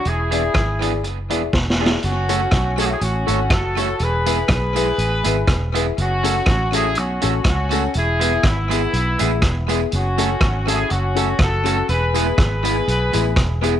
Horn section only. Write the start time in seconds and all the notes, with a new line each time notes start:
0.07 E4 G#4
2.04 C#4 F#4
2.80 E4 F#4 G#4
2.91 E4 G#4
3.01 C#4 F#4
3.51 F#4 A4
4.01 G#4 B4
4.51 G#4 B4
5.99 C#4 F#4
6.75 E4 G#4
6.97 C#4 F#4
7.48 C#4 F#4
7.97 E4 G#4
8.46 B3 E4
9.93 C#4 F#4
10.67 E4 G#4
10.91 C#4 F#4
11.39 F#4 A4
11.89 G#4 B4
12.38 G#4 B4